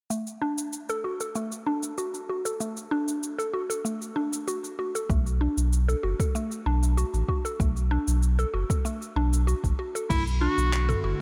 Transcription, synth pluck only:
0.10 0.26 A3 medium
0.42 0.87 D4 medium
0.89 1.03 A4 medium
1.04 1.19 F#4 medium
1.21 1.35 A4 medium
1.35 1.51 A3 medium
1.67 1.96 D4 medium
1.98 2.27 F#4 medium
2.29 2.45 F#4 medium
2.45 2.59 A4 medium
2.60 2.76 A3 medium
2.91 3.37 D4 loud
3.38 3.52 A4 medium
3.53 3.69 F#4 medium
3.70 3.84 A4 medium
3.85 4.00 A3 medium
4.16 4.46 D4 medium
4.48 4.77 F#4 medium
4.79 4.94 F#4 medium
4.95 5.09 A4 medium
5.10 5.25 A3 medium
5.41 5.87 D4 loud
5.88 6.02 A4 medium
6.03 6.19 F#4 medium
6.20 6.34 A4 medium
6.35 6.50 A3 medium
6.66 6.96 D4 medium
6.97 7.27 F#4 medium
7.29 7.44 F#4 medium
7.45 7.59 A4 medium
7.60 7.75 A3 medium
7.91 8.37 D4 loud
8.39 8.52 A4 medium
8.54 8.69 F#4 medium
8.70 8.84 A4 medium
8.85 9.00 A3 medium
9.16 9.46 D4 loud
9.47 9.77 F#4 medium
9.79 9.94 F#4 medium
9.95 10.09 A4 medium
10.10 10.26 A3 medium
10.41 10.87 D4 loud
10.89 11.02 A4 loud
11.04 11.19 F#4 medium

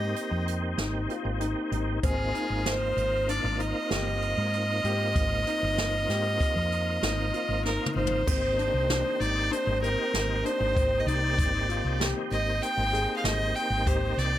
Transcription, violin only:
0.00 0.43 D#5 medium
2.05 2.69 G#4 medium
2.68 3.31 C5 medium
3.29 3.62 D5 medium
3.60 7.64 D#5 medium
7.65 7.94 A#4 medium
7.95 9.22 C5 medium
9.20 9.53 D5 medium
9.51 9.81 C5 medium
9.82 10.46 A#4 medium
10.45 11.01 C5 medium
11.00 11.09 D#5 medium
11.07 12.00 D5 medium
12.32 12.64 D#5 medium
12.63 13.16 G5 medium
13.17 13.26 F5 medium
13.24 13.57 D#5 loud
13.55 13.89 G5 medium
13.87 14.20 C5 medium
14.18 14.39 D5 loud

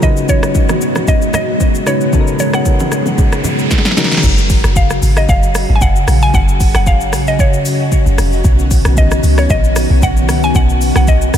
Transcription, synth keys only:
0.02 0.87 C#3 medium
0.02 0.87 C#4 medium
0.02 0.87 D#4 medium
0.02 0.88 F#4 medium
0.02 0.88 B4 medium
1.86 2.08 C#3 medium
1.86 2.08 C#4 medium
1.86 2.08 D#4 medium
1.86 2.09 F#4 medium
1.86 2.09 B4 medium
2.13 2.97 C#3 medium
2.13 2.98 C#4 medium
2.13 2.98 D#4 medium
2.13 2.98 F#4 medium
2.13 2.20 A4 medium
2.21 3.01 A#4 medium
3.97 4.18 C#3 medium
3.97 4.19 C#4 medium
3.97 4.19 D#4 medium
3.97 4.19 F#4 medium
3.97 4.19 A#4 loud

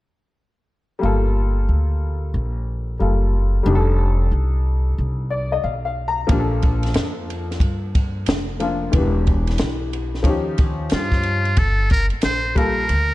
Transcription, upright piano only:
0.99 2.94 G3 medium
0.99 2.96 A#3 medium
1.03 2.97 F4 medium
1.03 2.98 A4 medium
2.99 3.62 G3 soft
2.99 3.66 A#3 soft
2.99 3.67 F4 soft
2.99 3.67 A4 soft
3.63 6.24 G3 medium
3.63 6.25 D4 medium
3.63 6.26 D#4 medium
3.69 3.76 G4 soft
3.75 6.30 A4 medium
5.30 5.51 D5 medium
5.52 5.63 D#5 medium
5.64 5.84 F5 soft
5.85 6.06 F5 medium
6.08 6.28 A#5 medium
6.27 8.55 F3 medium
6.27 8.56 A#3 medium
6.31 8.57 D4 medium
6.31 6.40 G4 medium
6.39 8.61 A4 medium
8.60 8.93 F3 soft
8.60 8.93 A#3 soft
8.60 8.94 D4 soft
8.60 8.94 F4 medium
8.92 10.22 E3 medium
8.92 10.23 B3 medium
8.92 10.24 D4 medium
8.98 10.25 G4 medium
10.23 11.53 F3 medium
10.23 11.54 C#4 medium
10.23 11.55 D#4 medium
10.28 11.56 G4 medium
12.55 12.82 G3 medium
12.55 12.82 A#3 medium
12.55 12.83 F4 medium
12.55 12.83 A4 medium

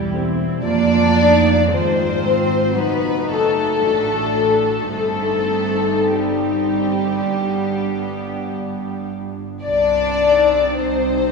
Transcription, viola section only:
0.00 0.14 G3 soft
0.00 0.61 E4 medium
0.14 0.65 C4 medium
0.65 1.67 A#3 medium
0.65 1.15 F4 medium
1.16 1.69 D#4 medium
1.69 2.22 G#3 medium
1.69 2.73 F4 medium
2.23 2.75 C4 medium
2.75 3.81 D#4 medium
2.75 3.79 F#4 medium
3.81 4.92 D4 soft
3.81 4.33 F#4 soft
4.35 4.91 F#4 soft
4.93 7.26 C4 soft
4.93 7.26 D#4 soft
7.30 9.44 B3 soft
7.30 9.40 D4 soft
10.22 11.31 C4 soft
10.22 11.31 D#4 soft

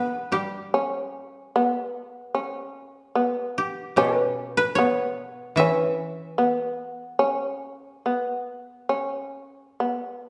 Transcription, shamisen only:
0.00 0.75 B3 medium
0.74 1.54 C#4 medium
1.56 2.35 B3 medium
2.35 3.16 C#4 medium
3.15 3.97 B3 medium
3.98 4.78 C#4 medium
4.79 5.59 B3 medium
5.60 6.41 C#4 medium
6.38 7.20 B3 medium
7.19 8.02 C#4 medium
8.06 8.91 B3 medium
8.89 9.78 C#4 medium
9.80 10.29 B3 soft

